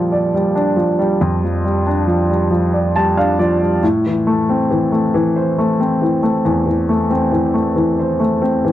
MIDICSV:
0, 0, Header, 1, 2, 480
1, 0, Start_track
1, 0, Tempo, 872093
1, 669, Time_signature, 6, 3, 24, 8
1, 4799, End_track
2, 0, Start_track
2, 0, Title_t, "Grand piano"
2, 0, Program_c, 0, 0
2, 0, Control_c, 0, 64, 127
2, 0, Note_on_c, 0, 46, 46
2, 0, Note_on_c, 0, 53, 47
2, 0, Note_on_c, 0, 55, 38
2, 0, Note_on_c, 0, 62, 43
2, 67, Note_on_c, 0, 74, 38
2, 180, Note_off_c, 0, 55, 0
2, 188, Note_on_c, 0, 55, 40
2, 297, Note_off_c, 0, 62, 0
2, 305, Note_on_c, 0, 62, 43
2, 413, Note_off_c, 0, 53, 0
2, 421, Note_on_c, 0, 53, 40
2, 536, Note_off_c, 0, 55, 0
2, 544, Note_on_c, 0, 55, 41
2, 648, Note_off_c, 0, 46, 0
2, 667, Note_on_c, 0, 41, 53
2, 783, Note_off_c, 0, 53, 0
2, 791, Note_on_c, 0, 53, 39
2, 896, Note_off_c, 0, 55, 0
2, 904, Note_on_c, 0, 55, 44
2, 1006, Note_off_c, 0, 74, 0
2, 1019, Note_off_c, 0, 62, 0
2, 1027, Note_on_c, 0, 62, 43
2, 1132, Note_off_c, 0, 53, 0
2, 1141, Note_on_c, 0, 53, 46
2, 1252, Note_off_c, 0, 55, 0
2, 1260, Note_on_c, 0, 55, 39
2, 1371, Note_off_c, 0, 53, 0
2, 1380, Note_on_c, 0, 53, 48
2, 1506, Note_on_c, 0, 74, 38
2, 1620, Note_off_c, 0, 55, 0
2, 1628, Note_on_c, 0, 55, 43
2, 1628, Note_on_c, 0, 81, 58
2, 1739, Note_off_c, 0, 62, 0
2, 1740, Note_off_c, 0, 81, 0
2, 1747, Note_on_c, 0, 62, 47
2, 1747, Note_on_c, 0, 77, 52
2, 1859, Note_off_c, 0, 74, 0
2, 1859, Note_off_c, 0, 77, 0
2, 1861, Note_off_c, 0, 53, 0
2, 1867, Note_on_c, 0, 74, 52
2, 1869, Note_on_c, 0, 53, 47
2, 1979, Note_off_c, 0, 55, 0
2, 1987, Note_on_c, 0, 55, 37
2, 2085, Note_off_c, 0, 41, 0
2, 2091, Note_off_c, 0, 74, 0
2, 2097, Note_off_c, 0, 62, 0
2, 2102, Note_off_c, 0, 53, 0
2, 2104, Note_off_c, 0, 55, 0
2, 2109, Note_on_c, 0, 45, 52
2, 2115, Control_c, 0, 64, 0
2, 2215, Control_c, 0, 64, 127
2, 2237, Note_on_c, 0, 52, 35
2, 2350, Note_on_c, 0, 57, 45
2, 2473, Note_on_c, 0, 60, 45
2, 2582, Note_off_c, 0, 52, 0
2, 2590, Note_on_c, 0, 52, 45
2, 2700, Note_off_c, 0, 57, 0
2, 2708, Note_on_c, 0, 57, 42
2, 2822, Note_off_c, 0, 52, 0
2, 2831, Note_on_c, 0, 52, 57
2, 2952, Note_on_c, 0, 72, 43
2, 3065, Note_off_c, 0, 57, 0
2, 3074, Note_on_c, 0, 57, 46
2, 3184, Note_off_c, 0, 60, 0
2, 3192, Note_on_c, 0, 60, 43
2, 3304, Note_off_c, 0, 52, 0
2, 3312, Note_on_c, 0, 52, 38
2, 3420, Note_off_c, 0, 57, 0
2, 3428, Note_on_c, 0, 57, 44
2, 3526, Note_off_c, 0, 45, 0
2, 3551, Note_on_c, 0, 40, 52
2, 3659, Note_off_c, 0, 52, 0
2, 3667, Note_on_c, 0, 52, 37
2, 3784, Note_off_c, 0, 57, 0
2, 3793, Note_on_c, 0, 57, 44
2, 3888, Note_off_c, 0, 72, 0
2, 3902, Note_off_c, 0, 60, 0
2, 3911, Note_on_c, 0, 60, 44
2, 4021, Note_off_c, 0, 52, 0
2, 4029, Note_on_c, 0, 52, 42
2, 4142, Note_off_c, 0, 57, 0
2, 4150, Note_on_c, 0, 57, 40
2, 4263, Note_off_c, 0, 52, 0
2, 4271, Note_on_c, 0, 52, 48
2, 4399, Note_on_c, 0, 72, 37
2, 4503, Note_off_c, 0, 57, 0
2, 4512, Note_on_c, 0, 57, 40
2, 4625, Note_off_c, 0, 60, 0
2, 4634, Note_on_c, 0, 60, 45
2, 4750, Note_off_c, 0, 52, 0
2, 4758, Note_on_c, 0, 52, 41
2, 4799, Note_off_c, 0, 40, 0
2, 4799, Note_off_c, 0, 52, 0
2, 4799, Note_off_c, 0, 57, 0
2, 4799, Note_off_c, 0, 60, 0
2, 4799, Note_off_c, 0, 72, 0
2, 4799, End_track
0, 0, End_of_file